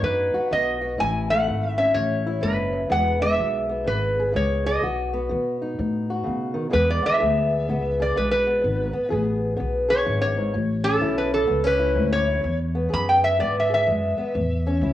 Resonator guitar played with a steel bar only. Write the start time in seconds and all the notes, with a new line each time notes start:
0.04 B4
0.53 D#5
1.00 G#5
1.30 F#5
1.78 E5
1.94 C#5
2.43 B4
2.92 F#5
3.22 E5
3.87 B4
4.36 C#5
4.66 D#5
6.73 B4
6.90 D5
7.06 E5
8.02 D5
8.17 B4
8.31 B4
9.90 C#5
10.22 C#5
10.84 A4
11.18 B4
11.34 A4
11.67 B4
12.12 C#5
12.94 B5
13.09 G5
13.24 E5
13.40 D5
13.60 E5
13.74 E5